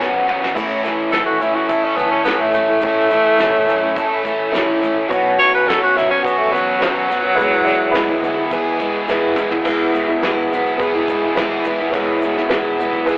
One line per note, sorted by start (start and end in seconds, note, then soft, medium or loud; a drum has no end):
0.00 0.50 G#1 medium
0.00 0.29 B2 medium
0.00 0.27 F#3 medium
0.00 0.26 B3 medium
0.00 0.55 B3 medium
0.00 0.27 B3 loud
0.00 0.55 C#4 medium
0.00 0.28 C#4 medium
0.00 0.54 F#4 medium
0.00 0.56 F#4 medium
0.00 0.28 F#4 loud
0.00 snare medium
0.14 kick medium
0.28 0.43 F#3 medium
0.28 0.42 B3 medium
0.28 0.41 C#4 medium
0.28 0.40 F#4 medium
0.28 mid tom medium
0.41 0.55 B3 soft
0.41 0.54 C#4 medium
0.41 0.55 F#4 medium
0.41 snare medium
0.55 0.82 A1 medium
0.55 0.85 A2 medium
0.55 0.80 E3 medium
0.55 0.82 A3 medium
0.55 2.80 A3 medium
0.55 0.82 C#4 loud
0.55 2.81 C#4 medium
0.55 0.81 E4 loud
0.55 2.81 E4 medium
0.55 0.83 E4 medium
0.55 0.81 A4 medium
0.55 0.82 C#5 loud
0.55 kick loud
0.55 open hi-hat medium
0.55 crash medium
0.55 shaker loud
0.82 1.10 E3 medium
0.82 1.11 A3 medium
0.82 1.11 C#4 medium
0.82 1.11 E4 medium
0.82 1.10 E4 medium
0.82 1.10 A4 medium
0.82 shaker medium
0.86 1.11 A1 medium
0.86 1.11 C#5 medium
0.86 snare soft
1.11 1.27 A2 medium
1.11 1.27 E3 medium
1.11 1.26 A3 medium
1.11 1.24 C#4 medium
1.11 1.62 E4 medium
1.11 1.24 E4 medium
1.11 1.25 A4 medium
1.11 1.62 A4 medium
1.11 1.63 B4 medium
1.11 snare loud
1.11 open hi-hat medium
1.11 shaker medium
1.15 1.40 A1 medium
1.25 1.38 A3 soft
1.25 1.38 C#4 soft
1.25 1.39 E4 medium
1.25 1.43 F#4 medium
1.39 1.67 A1 medium
1.39 1.55 E3 medium
1.39 1.55 A3 medium
1.39 1.54 C#4 medium
1.39 1.52 E4 medium
1.39 1.57 E4 medium
1.39 shaker medium
1.53 1.95 A3 soft
1.53 1.96 C#4 soft
1.53 1.95 E4 medium
1.53 1.68 F#4 medium
1.68 1.95 A1 medium
1.68 1.86 E4 medium
1.68 2.19 E4 medium
1.68 3.12 A4 medium
1.68 2.19 A4 medium
1.68 2.20 C#5 medium
1.68 kick loud
1.68 open hi-hat medium
1.68 shaker medium
1.85 1.97 C#4 medium
1.96 2.23 D2 medium
1.96 2.23 E3 medium
1.96 2.24 A3 medium
1.96 2.11 B3 medium
1.96 2.24 C#4 medium
1.96 2.24 E4 medium
1.96 kick medium
1.96 shaker medium
2.11 2.24 C#4 medium
2.24 2.52 A1 medium
2.24 2.55 A2 medium
2.24 2.53 E3 medium
2.24 2.54 A3 medium
2.24 2.42 B3 medium
2.24 2.54 C#4 medium
2.24 2.76 E4 medium
2.24 2.55 E4 medium
2.24 2.76 A4 medium
2.24 2.77 C#5 medium
2.24 snare loud
2.24 open hi-hat medium
2.24 shaker medium
2.40 2.54 A3 medium
2.53 2.80 A1 medium
2.53 2.69 E3 medium
2.53 4.21 A3 loud
2.53 2.68 A3 medium
2.53 2.67 C#4 medium
2.53 2.66 E4 medium
2.53 shaker medium
2.68 2.79 A3 soft
2.68 2.81 C#4 soft
2.68 2.81 E4 medium
2.81 3.09 A1 medium
2.81 3.11 A2 medium
2.81 3.08 E3 medium
2.81 3.09 A3 medium
2.81 5.08 A3 medium
2.81 3.09 C#4 medium
2.81 5.08 C#4 medium
2.81 3.10 E4 medium
2.81 3.08 E4 medium
2.81 5.08 E4 medium
2.81 3.08 A4 medium
2.81 3.08 C#5 medium
2.81 kick loud
2.81 open hi-hat medium
2.81 shaker medium
3.09 3.38 A1 medium
3.09 3.36 E3 medium
3.09 3.36 A3 medium
3.09 3.37 C#4 medium
3.09 3.37 E4 medium
3.09 3.37 A4 medium
3.09 shaker medium
3.13 3.37 C#5 medium
3.37 3.66 E2 medium
3.37 3.53 A2 medium
3.37 3.53 E3 medium
3.37 3.51 A3 medium
3.37 3.51 C#4 medium
3.37 3.49 E4 medium
3.37 3.90 E4 medium
3.37 snare loud
3.37 shaker medium
3.41 3.90 A4 medium
3.41 3.91 C#5 loud
3.51 3.66 A3 soft
3.51 3.67 C#4 medium
3.51 3.66 E4 medium
3.66 3.95 F#2 medium
3.66 3.82 E3 medium
3.66 3.81 A3 medium
3.66 3.80 C#4 medium
3.66 3.79 E4 medium
3.66 shaker medium
3.80 4.22 A3 medium
3.80 4.23 C#4 medium
3.80 4.23 E4 medium
3.96 4.22 A2 medium
3.96 4.46 E4 medium
3.96 4.46 A4 medium
3.96 5.11 A4 medium
3.96 4.46 C#5 medium
3.96 kick loud
3.96 open hi-hat medium
3.96 shaker medium
4.23 4.51 A1 medium
4.23 4.50 E3 medium
4.23 4.50 A3 medium
4.23 4.51 C#4 medium
4.23 4.52 E4 medium
4.23 kick medium
4.23 shaker medium
4.51 5.04 A1 loud
4.51 4.82 A2 medium
4.51 4.79 E3 loud
4.51 4.80 A3 loud
4.51 4.80 C#4 loud
4.51 5.03 E4 medium
4.51 4.80 E4 loud
4.51 5.03 A4 medium
4.51 5.03 C#5 loud
4.51 open hi-hat medium
4.51 shaker medium
4.55 snare loud
4.80 4.96 E3 medium
4.80 4.94 A3 medium
4.80 4.93 C#4 medium
4.80 4.92 E4 medium
4.80 shaker medium
4.93 5.09 A3 medium
4.93 5.08 C#4 medium
4.93 5.09 E4 medium
5.08 5.36 B1 medium
5.08 5.38 B2 medium
5.08 5.37 F#3 medium
5.08 5.38 B3 loud
5.08 7.35 B3 medium
5.08 7.35 C#4 medium
5.08 5.39 C#4 medium
5.08 5.35 F#4 loud
5.08 7.35 F#4 medium
5.08 5.38 F#4 medium
5.08 5.35 B4 medium
5.08 5.35 C#5 loud
5.08 kick loud
5.08 open hi-hat medium
5.08 shaker medium
5.37 5.64 B1 medium
5.37 5.65 F#3 medium
5.37 5.65 B3 medium
5.37 5.66 C#4 medium
5.37 5.63 F#4 medium
5.37 5.66 F#4 medium
5.37 5.64 B4 medium
5.37 5.64 C#5 medium
5.37 5.53 C#5 loud
5.37 shaker medium
5.42 snare soft
5.54 5.70 B4 medium
5.65 5.92 B1 loud
5.65 5.81 B2 medium
5.65 5.81 F#3 medium
5.65 5.81 B3 medium
5.65 5.81 C#4 medium
5.65 6.16 F#4 medium
5.65 5.80 F#4 medium
5.65 5.81 A4 loud
5.65 6.17 B4 medium
5.65 6.17 C#5 medium
5.69 snare loud
5.69 shaker medium
5.81 5.94 B3 soft
5.81 5.94 C#4 medium
5.81 5.96 F#4 medium
5.81 5.98 F#4 medium
5.95 6.21 B1 loud
5.95 6.10 F#3 medium
5.95 6.10 B3 medium
5.95 6.09 C#4 medium
5.95 6.10 E4 medium
5.95 6.08 F#4 medium
5.95 snare soft
5.95 shaker medium
6.09 6.52 B3 soft
6.09 6.24 C#4 loud
6.09 6.53 C#4 medium
6.09 6.52 F#4 medium
6.23 6.50 B1 medium
6.23 6.39 B3 medium
6.23 6.73 F#4 medium
6.23 7.38 F#4 medium
6.23 6.74 B4 medium
6.23 6.74 C#5 medium
6.23 kick loud
6.23 open hi-hat medium
6.23 shaker medium
6.38 6.53 A3 medium
6.52 6.78 E2 medium
6.52 6.80 F#3 loud
6.52 6.79 F#3 medium
6.52 6.79 B3 medium
6.52 6.79 C#4 medium
6.52 6.79 F#4 medium
6.52 kick medium
6.52 shaker medium
6.79 7.06 B1 medium
6.79 7.09 B2 medium
6.79 7.07 F#3 medium
6.79 8.49 F#3 loud
6.79 7.08 B3 medium
6.79 7.08 C#4 medium
6.79 7.29 F#4 medium
6.79 7.09 F#4 medium
6.79 7.30 B4 medium
6.79 7.30 C#5 medium
6.79 snare loud
6.79 open hi-hat medium
6.79 shaker medium
7.08 7.34 F#2 medium
7.08 7.23 F#3 medium
7.08 7.23 B3 medium
7.08 7.21 C#4 medium
7.08 7.21 F#4 medium
7.08 shaker medium
7.22 7.37 B3 soft
7.22 7.37 C#4 medium
7.22 7.37 F#4 medium
7.35 7.63 E1 medium
7.35 7.66 E2 medium
7.35 7.66 B2 medium
7.35 7.65 E3 medium
7.35 7.66 G#3 medium
7.35 9.63 B3 medium
7.35 7.66 B3 medium
7.35 7.61 E4 medium
7.35 9.62 E4 medium
7.35 7.67 E4 medium
7.35 9.62 G#4 medium
7.35 7.62 G#4 medium
7.35 7.62 B4 loud
7.35 kick loud
7.35 open hi-hat medium
7.35 shaker medium
7.64 7.91 E1 medium
7.64 9.09 B2 medium
7.64 7.94 E3 medium
7.64 7.94 G#3 medium
7.64 7.94 B3 medium
7.64 7.90 E4 medium
7.64 7.94 E4 medium
7.64 7.91 G#4 medium
7.64 7.91 D5 medium
7.64 snare soft
7.64 shaker medium
7.91 8.20 B1 medium
7.91 8.09 E2 medium
7.91 8.09 B2 medium
7.91 8.09 E3 medium
7.91 8.09 G#3 medium
7.91 8.42 E4 medium
7.91 8.08 E4 medium
7.91 8.43 G#4 medium
7.91 8.43 B4 loud
7.91 snare loud
7.91 open hi-hat medium
7.91 shaker medium
7.96 8.08 B3 medium
8.09 8.22 E3 medium
8.09 8.22 G#3 medium
8.09 8.23 B3 medium
8.09 8.23 E4 medium
8.22 8.48 D2 loud
8.22 8.37 E3 medium
8.22 8.36 G#3 medium
8.22 8.36 B3 medium
8.22 8.35 E4 medium
8.22 shaker medium
8.36 8.78 E3 medium
8.36 8.79 G#3 medium
8.36 8.79 B3 medium
8.36 8.80 E4 medium
8.51 8.77 E2 medium
8.51 9.01 E4 medium
8.51 9.65 G#4 medium
8.51 9.01 G#4 medium
8.51 9.01 B4 loud
8.51 kick loud
8.51 open hi-hat medium
8.51 shaker medium
8.79 9.05 E1 medium
8.79 9.08 E3 medium
8.79 9.08 G#3 medium
8.79 9.09 B3 medium
8.79 9.09 E4 medium
8.79 kick medium
8.79 shaker medium
9.08 9.58 E1 loud
9.08 9.37 E2 medium
9.08 9.37 B2 loud
9.08 9.36 E3 medium
9.08 9.36 G#3 loud
9.08 9.37 B3 medium
9.08 9.58 E4 medium
9.08 9.37 E4 loud
9.08 9.58 G#4 medium
9.08 9.59 B4 medium
9.08 snare medium
9.08 shaker medium
9.36 9.51 E3 medium
9.36 9.52 G#3 medium
9.36 9.51 B3 medium
9.36 9.49 E4 medium
9.36 mid tom medium
9.36 shaker medium
9.51 9.65 E3 medium
9.51 9.66 G#3 medium
9.51 9.66 B3 medium
9.51 9.65 E4 medium
9.51 floor tom medium
9.65 10.20 E1 medium
9.65 9.94 E2 medium
9.65 9.94 B2 loud
9.65 9.92 E3 medium
9.65 9.92 G#3 medium
9.65 10.14 B3 medium
9.65 11.91 B3 medium
9.65 9.93 B3 loud
9.65 10.15 E4 medium
9.65 11.91 E4 medium
9.65 9.94 E4 medium
9.65 10.15 G#4 medium
9.65 11.92 G#4 medium
9.65 10.15 B4 medium
9.65 kick loud
9.65 crash loud
9.65 shaker medium
9.93 11.36 B2 medium
9.93 10.08 E3 medium
9.93 10.07 G#3 medium
9.93 10.07 B3 medium
9.93 10.06 E4 medium
9.93 shaker medium
10.07 10.21 E3 soft
10.07 10.21 G#3 medium
10.07 10.22 B3 medium
10.07 10.22 E4 medium
10.07 shaker soft
10.21 10.50 E1 loud
10.21 10.51 E2 medium
10.21 10.51 B2 medium
10.21 10.50 E3 medium
10.21 10.50 G#3 medium
10.21 10.71 B3 medium
10.21 10.51 B3 medium
10.21 10.71 E4 medium
10.21 10.51 E4 loud
10.21 10.72 G#4 medium
10.21 10.72 B4 loud
10.21 snare loud
10.21 open hi-hat medium
10.21 shaker medium
10.51 10.79 B1 medium
10.51 10.94 E3 medium
10.51 10.94 G#3 medium
10.51 10.94 B3 medium
10.51 10.93 E4 medium
10.51 shaker medium
10.66 shaker soft
10.78 11.07 B1 medium
10.78 11.28 B3 loud
10.78 11.29 E4 medium
10.78 11.28 G#4 medium
10.78 11.38 G#4 medium
10.78 11.29 B4 loud
10.78 kick loud
10.78 open hi-hat medium
10.78 shaker medium
10.94 11.07 E3 medium
10.94 11.08 G#3 medium
10.94 11.08 B3 medium
10.94 11.08 E4 medium
11.08 11.35 E1 medium
11.08 11.22 E3 medium
11.08 11.23 G#3 medium
11.08 11.23 B3 medium
11.08 11.22 E4 medium
11.08 kick medium
11.08 shaker medium
11.23 11.36 E3 soft
11.23 11.36 G#3 medium
11.23 11.37 B3 medium
11.23 11.37 E4 medium
11.23 shaker soft
11.35 11.64 E1 medium
11.35 11.65 E2 medium
11.35 11.65 B2 medium
11.35 11.64 E3 medium
11.35 11.65 G#3 loud
11.35 11.85 B3 medium
11.35 11.65 B3 loud
11.35 11.85 E4 medium
11.35 11.66 E4 loud
11.35 11.85 G#4 medium
11.35 11.86 B4 loud
11.35 snare loud
11.35 open hi-hat medium
11.35 shaker medium
11.39 12.80 G#4 medium
11.64 11.92 E1 medium
11.64 11.79 E3 medium
11.64 11.80 G#3 medium
11.64 11.80 B3 medium
11.64 11.79 E4 medium
11.64 kick medium
11.64 shaker loud
11.80 11.94 E3 medium
11.80 11.94 G#3 medium
11.80 11.94 B3 medium
11.80 11.94 E4 medium
11.91 12.48 E1 loud
11.91 12.22 E2 medium
11.91 12.22 B2 medium
11.91 12.41 B3 medium
11.91 13.18 B3 medium
11.91 12.41 E4 medium
11.91 13.18 E4 medium
11.91 12.42 G#4 medium
11.91 13.18 G#4 medium
11.91 12.42 C#5 medium
11.91 kick loud
11.91 open hi-hat medium
11.91 shaker medium
11.95 12.23 E3 medium
11.95 12.23 G#3 loud
11.95 12.23 B3 loud
11.95 12.23 E4 medium
12.22 13.18 B2 medium
12.22 12.37 E3 medium
12.22 12.37 G#3 medium
12.22 12.37 B3 medium
12.22 12.36 E4 medium
12.22 shaker loud
12.36 12.51 E3 medium
12.36 12.51 G#3 medium
12.36 12.51 B3 medium
12.36 12.51 E4 medium
12.36 snare soft
12.36 shaker soft
12.48 12.78 E1 loud
12.48 12.80 E2 medium
12.48 12.79 B2 medium
12.48 12.78 E3 medium
12.48 12.98 B3 medium
12.48 12.98 E4 medium
12.48 12.99 G#4 medium
12.48 12.99 B4 loud
12.48 snare loud
12.48 open hi-hat medium
12.48 shaker medium
12.53 12.79 G#3 medium
12.53 12.79 B3 medium
12.53 12.80 E4 medium
12.79 13.06 B1 loud
12.79 13.18 E3 medium
12.79 13.18 G#3 medium
12.79 13.18 B3 medium
12.79 13.18 E4 medium
12.79 shaker medium
12.93 kick medium
12.93 shaker soft
13.05 13.18 E1 medium
13.05 13.18 B3 medium
13.05 13.18 E4 medium
13.05 13.18 G#4 medium
13.05 13.18 B4 loud
13.05 kick loud
13.05 open hi-hat medium
13.05 shaker medium